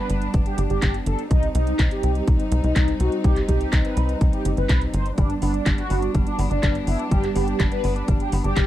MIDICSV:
0, 0, Header, 1, 6, 480
1, 0, Start_track
1, 0, Key_signature, 1, "major"
1, 0, Tempo, 483871
1, 1297, Time_signature, 4, 2, 24, 8
1, 8598, End_track
2, 0, Start_track
2, 0, Title_t, "Analog polysynth"
2, 0, Program_c, 0, 90
2, 0, Note_on_c, 0, 71, 93
2, 304, Note_off_c, 0, 71, 0
2, 454, Note_on_c, 0, 67, 86
2, 620, Note_off_c, 0, 67, 0
2, 694, Note_on_c, 0, 67, 98
2, 942, Note_off_c, 0, 67, 0
2, 1056, Note_on_c, 0, 69, 89
2, 1221, Note_off_c, 0, 69, 0
2, 1298, Note_on_c, 0, 63, 95
2, 1462, Note_off_c, 0, 63, 0
2, 1536, Note_on_c, 0, 63, 92
2, 1783, Note_off_c, 0, 63, 0
2, 1898, Note_on_c, 0, 67, 94
2, 2226, Note_off_c, 0, 67, 0
2, 2375, Note_on_c, 0, 63, 86
2, 2540, Note_off_c, 0, 63, 0
2, 2615, Note_on_c, 0, 63, 99
2, 2863, Note_off_c, 0, 63, 0
2, 2975, Note_on_c, 0, 66, 90
2, 3140, Note_off_c, 0, 66, 0
2, 3214, Note_on_c, 0, 67, 98
2, 3380, Note_off_c, 0, 67, 0
2, 3456, Note_on_c, 0, 67, 97
2, 3703, Note_off_c, 0, 67, 0
2, 3816, Note_on_c, 0, 71, 92
2, 4146, Note_off_c, 0, 71, 0
2, 4294, Note_on_c, 0, 67, 85
2, 4460, Note_off_c, 0, 67, 0
2, 4538, Note_on_c, 0, 71, 95
2, 4784, Note_off_c, 0, 71, 0
2, 4896, Note_on_c, 0, 72, 87
2, 5061, Note_off_c, 0, 72, 0
2, 5137, Note_on_c, 0, 62, 97
2, 5301, Note_off_c, 0, 62, 0
2, 5376, Note_on_c, 0, 62, 93
2, 5623, Note_off_c, 0, 62, 0
2, 5736, Note_on_c, 0, 66, 98
2, 6066, Note_off_c, 0, 66, 0
2, 6216, Note_on_c, 0, 62, 89
2, 6381, Note_off_c, 0, 62, 0
2, 6455, Note_on_c, 0, 62, 97
2, 6703, Note_off_c, 0, 62, 0
2, 6813, Note_on_c, 0, 64, 88
2, 6980, Note_off_c, 0, 64, 0
2, 7055, Note_on_c, 0, 67, 96
2, 7220, Note_off_c, 0, 67, 0
2, 7294, Note_on_c, 0, 67, 92
2, 7542, Note_off_c, 0, 67, 0
2, 7656, Note_on_c, 0, 71, 97
2, 7985, Note_off_c, 0, 71, 0
2, 8136, Note_on_c, 0, 67, 84
2, 8301, Note_off_c, 0, 67, 0
2, 8375, Note_on_c, 0, 67, 96
2, 8598, Note_off_c, 0, 67, 0
2, 8598, End_track
3, 0, Start_track
3, 0, Title_t, "String section"
3, 0, Program_c, 1, 48
3, 0, Note_on_c, 1, 55, 74
3, 0, Note_on_c, 1, 59, 70
3, 0, Note_on_c, 1, 62, 84
3, 1259, Note_off_c, 1, 59, 0
3, 1260, Note_off_c, 1, 62, 0
3, 1295, Note_on_c, 1, 63, 83
3, 1296, Note_on_c, 1, 60, 71
3, 5098, Note_off_c, 1, 55, 0
3, 5098, Note_off_c, 1, 60, 0
3, 5098, Note_off_c, 1, 63, 0
3, 5133, Note_on_c, 1, 55, 77
3, 5133, Note_on_c, 1, 62, 86
3, 5134, Note_on_c, 1, 59, 70
3, 8598, Note_off_c, 1, 55, 0
3, 8598, Note_off_c, 1, 59, 0
3, 8598, Note_off_c, 1, 62, 0
3, 8598, End_track
4, 0, Start_track
4, 0, Title_t, "Clean electric guitar"
4, 0, Program_c, 2, 27
4, 5136, Note_on_c, 2, 55, 77
4, 5250, Note_off_c, 2, 55, 0
4, 5377, Note_on_c, 2, 59, 74
4, 5481, Note_off_c, 2, 59, 0
4, 5497, Note_on_c, 2, 62, 73
4, 5601, Note_off_c, 2, 62, 0
4, 5617, Note_on_c, 2, 55, 78
4, 5731, Note_off_c, 2, 55, 0
4, 5857, Note_on_c, 2, 59, 73
4, 5961, Note_off_c, 2, 59, 0
4, 5976, Note_on_c, 2, 62, 74
4, 6081, Note_off_c, 2, 62, 0
4, 6096, Note_on_c, 2, 55, 79
4, 6210, Note_off_c, 2, 55, 0
4, 6336, Note_on_c, 2, 59, 73
4, 6441, Note_off_c, 2, 59, 0
4, 6456, Note_on_c, 2, 62, 75
4, 6561, Note_off_c, 2, 62, 0
4, 6577, Note_on_c, 2, 55, 85
4, 6691, Note_off_c, 2, 55, 0
4, 6816, Note_on_c, 2, 59, 73
4, 6921, Note_off_c, 2, 59, 0
4, 6937, Note_on_c, 2, 62, 75
4, 7041, Note_off_c, 2, 62, 0
4, 7057, Note_on_c, 2, 55, 76
4, 7171, Note_off_c, 2, 55, 0
4, 7298, Note_on_c, 2, 59, 74
4, 7402, Note_off_c, 2, 59, 0
4, 7417, Note_on_c, 2, 62, 73
4, 7521, Note_off_c, 2, 62, 0
4, 7537, Note_on_c, 2, 55, 82
4, 7651, Note_off_c, 2, 55, 0
4, 7777, Note_on_c, 2, 59, 75
4, 7881, Note_off_c, 2, 59, 0
4, 7896, Note_on_c, 2, 62, 73
4, 8001, Note_off_c, 2, 62, 0
4, 8016, Note_on_c, 2, 55, 75
4, 8130, Note_off_c, 2, 55, 0
4, 8257, Note_on_c, 2, 59, 74
4, 8361, Note_off_c, 2, 59, 0
4, 8377, Note_on_c, 2, 62, 74
4, 8481, Note_off_c, 2, 62, 0
4, 8496, Note_on_c, 2, 55, 82
4, 8598, Note_off_c, 2, 55, 0
4, 8598, End_track
5, 0, Start_track
5, 0, Title_t, "Analog synth bass"
5, 0, Program_c, 3, 38
5, 96, Note_on_c, 3, 31, 79
5, 282, Note_off_c, 3, 31, 0
5, 337, Note_on_c, 3, 31, 78
5, 430, Note_off_c, 3, 31, 0
5, 575, Note_on_c, 3, 31, 98
5, 669, Note_off_c, 3, 31, 0
5, 696, Note_on_c, 3, 31, 81
5, 789, Note_off_c, 3, 31, 0
5, 818, Note_on_c, 3, 31, 84
5, 1003, Note_off_c, 3, 31, 0
5, 1055, Note_on_c, 3, 31, 80
5, 1149, Note_off_c, 3, 31, 0
5, 1297, Note_on_c, 3, 36, 94
5, 1483, Note_off_c, 3, 36, 0
5, 1536, Note_on_c, 3, 36, 97
5, 1722, Note_off_c, 3, 36, 0
5, 1777, Note_on_c, 3, 36, 81
5, 1870, Note_off_c, 3, 36, 0
5, 2017, Note_on_c, 3, 36, 82
5, 2202, Note_off_c, 3, 36, 0
5, 2258, Note_on_c, 3, 36, 80
5, 2350, Note_off_c, 3, 36, 0
5, 2496, Note_on_c, 3, 36, 98
5, 2589, Note_off_c, 3, 36, 0
5, 2617, Note_on_c, 3, 36, 80
5, 2710, Note_off_c, 3, 36, 0
5, 2737, Note_on_c, 3, 36, 85
5, 2923, Note_off_c, 3, 36, 0
5, 2976, Note_on_c, 3, 36, 82
5, 3069, Note_off_c, 3, 36, 0
5, 3218, Note_on_c, 3, 36, 94
5, 3403, Note_off_c, 3, 36, 0
5, 3457, Note_on_c, 3, 36, 94
5, 3643, Note_off_c, 3, 36, 0
5, 3697, Note_on_c, 3, 36, 79
5, 3790, Note_off_c, 3, 36, 0
5, 3936, Note_on_c, 3, 36, 81
5, 4122, Note_off_c, 3, 36, 0
5, 4177, Note_on_c, 3, 36, 80
5, 4270, Note_off_c, 3, 36, 0
5, 4416, Note_on_c, 3, 31, 86
5, 4509, Note_off_c, 3, 31, 0
5, 4536, Note_on_c, 3, 31, 88
5, 4629, Note_off_c, 3, 31, 0
5, 4657, Note_on_c, 3, 36, 91
5, 4842, Note_off_c, 3, 36, 0
5, 4896, Note_on_c, 3, 31, 90
5, 5082, Note_off_c, 3, 31, 0
5, 5137, Note_on_c, 3, 31, 97
5, 5323, Note_off_c, 3, 31, 0
5, 5377, Note_on_c, 3, 31, 96
5, 5562, Note_off_c, 3, 31, 0
5, 5617, Note_on_c, 3, 31, 80
5, 5709, Note_off_c, 3, 31, 0
5, 5856, Note_on_c, 3, 31, 81
5, 6042, Note_off_c, 3, 31, 0
5, 6097, Note_on_c, 3, 31, 81
5, 6190, Note_off_c, 3, 31, 0
5, 6335, Note_on_c, 3, 31, 97
5, 6428, Note_off_c, 3, 31, 0
5, 6455, Note_on_c, 3, 31, 78
5, 6549, Note_off_c, 3, 31, 0
5, 6577, Note_on_c, 3, 31, 85
5, 6763, Note_off_c, 3, 31, 0
5, 6816, Note_on_c, 3, 31, 83
5, 6909, Note_off_c, 3, 31, 0
5, 7056, Note_on_c, 3, 31, 96
5, 7242, Note_off_c, 3, 31, 0
5, 7297, Note_on_c, 3, 31, 96
5, 7482, Note_off_c, 3, 31, 0
5, 7537, Note_on_c, 3, 31, 81
5, 7630, Note_off_c, 3, 31, 0
5, 7777, Note_on_c, 3, 31, 82
5, 7963, Note_off_c, 3, 31, 0
5, 8017, Note_on_c, 3, 31, 81
5, 8110, Note_off_c, 3, 31, 0
5, 8257, Note_on_c, 3, 31, 98
5, 8350, Note_off_c, 3, 31, 0
5, 8376, Note_on_c, 3, 31, 80
5, 8469, Note_off_c, 3, 31, 0
5, 8498, Note_on_c, 3, 31, 88
5, 8598, Note_off_c, 3, 31, 0
5, 8598, End_track
6, 0, Start_track
6, 0, Title_t, "Drums"
6, 96, Note_on_c, 9, 42, 91
6, 195, Note_off_c, 9, 42, 0
6, 215, Note_on_c, 9, 42, 38
6, 314, Note_off_c, 9, 42, 0
6, 335, Note_on_c, 9, 42, 63
6, 337, Note_on_c, 9, 36, 119
6, 434, Note_off_c, 9, 42, 0
6, 436, Note_off_c, 9, 36, 0
6, 455, Note_on_c, 9, 42, 38
6, 554, Note_off_c, 9, 42, 0
6, 575, Note_on_c, 9, 42, 91
6, 674, Note_off_c, 9, 42, 0
6, 695, Note_on_c, 9, 42, 39
6, 794, Note_off_c, 9, 42, 0
6, 815, Note_on_c, 9, 39, 115
6, 815, Note_on_c, 9, 42, 63
6, 817, Note_on_c, 9, 36, 123
6, 915, Note_off_c, 9, 39, 0
6, 915, Note_off_c, 9, 42, 0
6, 917, Note_off_c, 9, 36, 0
6, 936, Note_on_c, 9, 42, 37
6, 1035, Note_off_c, 9, 42, 0
6, 1056, Note_on_c, 9, 42, 94
6, 1155, Note_off_c, 9, 42, 0
6, 1177, Note_on_c, 9, 42, 40
6, 1276, Note_off_c, 9, 42, 0
6, 1296, Note_on_c, 9, 42, 61
6, 1297, Note_on_c, 9, 36, 122
6, 1395, Note_off_c, 9, 42, 0
6, 1397, Note_off_c, 9, 36, 0
6, 1417, Note_on_c, 9, 42, 37
6, 1516, Note_off_c, 9, 42, 0
6, 1536, Note_on_c, 9, 42, 88
6, 1635, Note_off_c, 9, 42, 0
6, 1656, Note_on_c, 9, 42, 37
6, 1756, Note_off_c, 9, 42, 0
6, 1776, Note_on_c, 9, 39, 125
6, 1776, Note_on_c, 9, 42, 63
6, 1777, Note_on_c, 9, 36, 121
6, 1875, Note_off_c, 9, 39, 0
6, 1875, Note_off_c, 9, 42, 0
6, 1876, Note_off_c, 9, 36, 0
6, 1897, Note_on_c, 9, 42, 37
6, 1996, Note_off_c, 9, 42, 0
6, 2017, Note_on_c, 9, 42, 88
6, 2116, Note_off_c, 9, 42, 0
6, 2136, Note_on_c, 9, 42, 37
6, 2235, Note_off_c, 9, 42, 0
6, 2257, Note_on_c, 9, 42, 61
6, 2258, Note_on_c, 9, 36, 122
6, 2356, Note_off_c, 9, 42, 0
6, 2357, Note_off_c, 9, 36, 0
6, 2377, Note_on_c, 9, 42, 37
6, 2476, Note_off_c, 9, 42, 0
6, 2497, Note_on_c, 9, 42, 85
6, 2596, Note_off_c, 9, 42, 0
6, 2617, Note_on_c, 9, 42, 38
6, 2716, Note_off_c, 9, 42, 0
6, 2737, Note_on_c, 9, 36, 120
6, 2737, Note_on_c, 9, 39, 118
6, 2737, Note_on_c, 9, 42, 61
6, 2836, Note_off_c, 9, 39, 0
6, 2836, Note_off_c, 9, 42, 0
6, 2837, Note_off_c, 9, 36, 0
6, 2856, Note_on_c, 9, 42, 38
6, 2956, Note_off_c, 9, 42, 0
6, 2976, Note_on_c, 9, 42, 89
6, 3075, Note_off_c, 9, 42, 0
6, 3097, Note_on_c, 9, 42, 38
6, 3196, Note_off_c, 9, 42, 0
6, 3217, Note_on_c, 9, 42, 61
6, 3218, Note_on_c, 9, 36, 124
6, 3316, Note_off_c, 9, 42, 0
6, 3317, Note_off_c, 9, 36, 0
6, 3337, Note_on_c, 9, 39, 37
6, 3337, Note_on_c, 9, 42, 35
6, 3436, Note_off_c, 9, 39, 0
6, 3436, Note_off_c, 9, 42, 0
6, 3458, Note_on_c, 9, 36, 63
6, 3458, Note_on_c, 9, 42, 82
6, 3557, Note_off_c, 9, 36, 0
6, 3557, Note_off_c, 9, 42, 0
6, 3578, Note_on_c, 9, 42, 37
6, 3677, Note_off_c, 9, 42, 0
6, 3696, Note_on_c, 9, 39, 120
6, 3696, Note_on_c, 9, 42, 64
6, 3697, Note_on_c, 9, 36, 116
6, 3795, Note_off_c, 9, 39, 0
6, 3795, Note_off_c, 9, 42, 0
6, 3796, Note_off_c, 9, 36, 0
6, 3817, Note_on_c, 9, 42, 37
6, 3916, Note_off_c, 9, 42, 0
6, 3937, Note_on_c, 9, 42, 86
6, 4036, Note_off_c, 9, 42, 0
6, 4056, Note_on_c, 9, 42, 38
6, 4156, Note_off_c, 9, 42, 0
6, 4176, Note_on_c, 9, 42, 62
6, 4177, Note_on_c, 9, 36, 119
6, 4275, Note_off_c, 9, 42, 0
6, 4276, Note_off_c, 9, 36, 0
6, 4296, Note_on_c, 9, 42, 35
6, 4396, Note_off_c, 9, 42, 0
6, 4416, Note_on_c, 9, 42, 87
6, 4515, Note_off_c, 9, 42, 0
6, 4536, Note_on_c, 9, 42, 38
6, 4635, Note_off_c, 9, 42, 0
6, 4656, Note_on_c, 9, 39, 119
6, 4656, Note_on_c, 9, 42, 60
6, 4657, Note_on_c, 9, 36, 124
6, 4755, Note_off_c, 9, 39, 0
6, 4755, Note_off_c, 9, 42, 0
6, 4756, Note_off_c, 9, 36, 0
6, 4776, Note_on_c, 9, 42, 34
6, 4875, Note_off_c, 9, 42, 0
6, 4896, Note_on_c, 9, 42, 87
6, 4996, Note_off_c, 9, 42, 0
6, 5016, Note_on_c, 9, 42, 36
6, 5115, Note_off_c, 9, 42, 0
6, 5136, Note_on_c, 9, 42, 62
6, 5137, Note_on_c, 9, 36, 118
6, 5235, Note_off_c, 9, 42, 0
6, 5236, Note_off_c, 9, 36, 0
6, 5255, Note_on_c, 9, 42, 36
6, 5354, Note_off_c, 9, 42, 0
6, 5375, Note_on_c, 9, 46, 102
6, 5474, Note_off_c, 9, 46, 0
6, 5495, Note_on_c, 9, 42, 37
6, 5595, Note_off_c, 9, 42, 0
6, 5616, Note_on_c, 9, 39, 114
6, 5616, Note_on_c, 9, 42, 63
6, 5617, Note_on_c, 9, 36, 117
6, 5715, Note_off_c, 9, 39, 0
6, 5715, Note_off_c, 9, 42, 0
6, 5716, Note_off_c, 9, 36, 0
6, 5735, Note_on_c, 9, 42, 38
6, 5835, Note_off_c, 9, 42, 0
6, 5855, Note_on_c, 9, 46, 101
6, 5954, Note_off_c, 9, 46, 0
6, 5976, Note_on_c, 9, 42, 36
6, 6075, Note_off_c, 9, 42, 0
6, 6096, Note_on_c, 9, 42, 61
6, 6097, Note_on_c, 9, 36, 110
6, 6195, Note_off_c, 9, 42, 0
6, 6196, Note_off_c, 9, 36, 0
6, 6216, Note_on_c, 9, 42, 37
6, 6315, Note_off_c, 9, 42, 0
6, 6336, Note_on_c, 9, 46, 105
6, 6435, Note_off_c, 9, 46, 0
6, 6457, Note_on_c, 9, 42, 37
6, 6556, Note_off_c, 9, 42, 0
6, 6577, Note_on_c, 9, 36, 118
6, 6577, Note_on_c, 9, 39, 114
6, 6577, Note_on_c, 9, 42, 61
6, 6676, Note_off_c, 9, 36, 0
6, 6676, Note_off_c, 9, 39, 0
6, 6676, Note_off_c, 9, 42, 0
6, 6698, Note_on_c, 9, 42, 35
6, 6797, Note_off_c, 9, 42, 0
6, 6817, Note_on_c, 9, 46, 108
6, 6916, Note_off_c, 9, 46, 0
6, 6938, Note_on_c, 9, 42, 37
6, 7037, Note_off_c, 9, 42, 0
6, 7057, Note_on_c, 9, 36, 116
6, 7057, Note_on_c, 9, 42, 62
6, 7156, Note_off_c, 9, 36, 0
6, 7156, Note_off_c, 9, 42, 0
6, 7177, Note_on_c, 9, 39, 34
6, 7177, Note_on_c, 9, 42, 39
6, 7276, Note_off_c, 9, 39, 0
6, 7276, Note_off_c, 9, 42, 0
6, 7296, Note_on_c, 9, 46, 105
6, 7395, Note_off_c, 9, 46, 0
6, 7416, Note_on_c, 9, 42, 39
6, 7515, Note_off_c, 9, 42, 0
6, 7536, Note_on_c, 9, 39, 112
6, 7536, Note_on_c, 9, 42, 65
6, 7537, Note_on_c, 9, 36, 110
6, 7635, Note_off_c, 9, 39, 0
6, 7635, Note_off_c, 9, 42, 0
6, 7636, Note_off_c, 9, 36, 0
6, 7655, Note_on_c, 9, 42, 39
6, 7754, Note_off_c, 9, 42, 0
6, 7775, Note_on_c, 9, 46, 106
6, 7875, Note_off_c, 9, 46, 0
6, 7896, Note_on_c, 9, 42, 38
6, 7995, Note_off_c, 9, 42, 0
6, 8016, Note_on_c, 9, 42, 63
6, 8017, Note_on_c, 9, 36, 110
6, 8115, Note_off_c, 9, 42, 0
6, 8116, Note_off_c, 9, 36, 0
6, 8135, Note_on_c, 9, 42, 38
6, 8235, Note_off_c, 9, 42, 0
6, 8256, Note_on_c, 9, 46, 107
6, 8355, Note_off_c, 9, 46, 0
6, 8376, Note_on_c, 9, 42, 39
6, 8475, Note_off_c, 9, 42, 0
6, 8496, Note_on_c, 9, 39, 114
6, 8496, Note_on_c, 9, 42, 64
6, 8497, Note_on_c, 9, 36, 116
6, 8596, Note_off_c, 9, 36, 0
6, 8596, Note_off_c, 9, 39, 0
6, 8596, Note_off_c, 9, 42, 0
6, 8598, End_track
0, 0, End_of_file